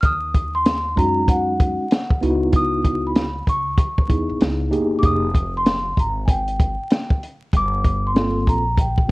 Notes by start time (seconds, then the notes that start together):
0.01 D#2 F6, kick, closed hi-hat
0.05 D#6
0.35 kick, closed hi-hat
0.55 C6
0.66 snare, closed hi-hat
0.96 F#2 G#3 C#4 D#4 F#4 A#5, kick, closed hi-hat
1.28 F#5, kick, closed hi-hat
1.60 kick, closed hi-hat
1.91 snare, closed hi-hat
2.10 kick
2.21 C#2 B3 D#4 E4 F#4, closed hi-hat
2.53 D#6, kick, closed hi-hat
2.84 kick, closed hi-hat
3.07 B5
3.16 snare, closed hi-hat
3.47 C#2 C#6, kick, closed hi-hat
3.78 kick, closed hi-hat
3.98 kick
4.08 E2 B3 D#4 E4 G#4, kick, closed hi-hat
4.29 B1
4.41 C#2, snare, closed hi-hat
4.70 F#1 A#3 D#4 G4 G#4, closed hi-hat
4.99 A#3 D#4 D6
5.03 F1 G4 G#4 D#6, kick, closed hi-hat
5.35 kick, closed hi-hat
5.57 C6
5.66 snare, closed hi-hat
5.97 G#1 A#5, kick, closed hi-hat
6.26 G#5, kick, closed hi-hat
6.31 G5
6.48 closed hi-hat
6.60 kick, closed hi-hat
6.90 snare, closed hi-hat
7.10 kick
7.23 closed hi-hat
7.53 G1 D6, kick, closed hi-hat
7.84 kick, closed hi-hat
8.07 C6
8.14 A#3 C4 F4 A4, snare, closed hi-hat
8.47 A#1 A#5, kick, closed hi-hat
8.78 G5, kick, closed hi-hat
8.98 kick
9.08 A#3